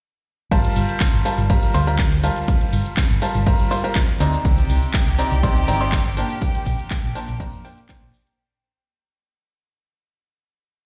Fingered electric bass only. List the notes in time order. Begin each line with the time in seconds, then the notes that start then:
0.52 G1
0.76 G1
1.14 G1
1.38 G1
1.74 D2
2.73 G1
3.10 G1
3.35 G1
4.20 D2
4.45 C2
4.69 C2
5.07 C2
5.32 C2
5.68 G1
6.66 A#1
7.04 A#1
7.28 A#1
7.53 F2
8.02 A#1